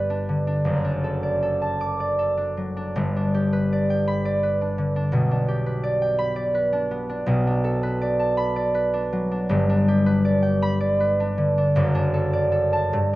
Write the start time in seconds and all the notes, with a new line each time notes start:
Already playing: G1 G2 G4 B4 D5 G5 B5
0.10 D4
0.29 D3
0.47 D4
0.65 F#1 F#2
0.85 D4
1.04 A4
1.23 D5
1.43 A4
1.62 A5
1.81 D6
2.00 D5
2.19 A4
2.37 D4
2.57 F#3
2.77 D4
2.96 G1 G2
3.16 D4
3.34 G4
3.53 B4
3.73 D5
3.90 G5
4.08 B5
4.26 D5
4.43 B4
4.62 D4
4.79 D3
4.96 D4
5.12 B1 B2
5.31 D4
5.48 G4
5.66 B4
5.84 D5
6.02 G5
6.19 B5
6.36 D5
6.55 B4
6.73 D4
6.91 B3
7.09 D4
7.26 B1 B2
7.47 D4
7.64 A4
7.83 B4
8.01 D5
8.19 A5
8.37 B5
8.56 D5
8.75 B4
8.94 D4
9.12 F#3
9.31 D4
9.49 G1 G2
9.69 D4
9.88 G4
10.06 B4
10.25 D5
10.43 G5
10.62 B5
10.80 D5
11.00 B4
11.20 D4
11.38 D3
11.58 D4
11.76 F#1 F#2
11.95 D4
12.14 A4
12.33 D5
12.52 A4
12.73 A5
12.93 G2